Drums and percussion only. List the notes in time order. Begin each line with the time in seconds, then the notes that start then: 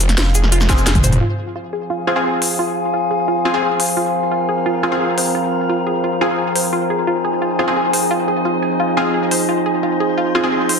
0.00 closed hi-hat, cabasa
0.09 snare, closed hi-hat
0.18 snare, closed hi-hat
0.35 closed hi-hat, cabasa
0.44 snare
0.52 closed hi-hat
0.61 snare, cabasa
0.69 kick, snare, closed hi-hat, cabasa
0.78 cabasa
0.87 snare, closed hi-hat
0.95 kick, closed hi-hat, mid tom
1.04 closed hi-hat, mid tom, cabasa
1.12 closed hi-hat, mid tom
2.42 open hi-hat
3.80 open hi-hat
5.18 open hi-hat
6.56 open hi-hat
7.93 open hi-hat
9.31 open hi-hat
10.69 open hi-hat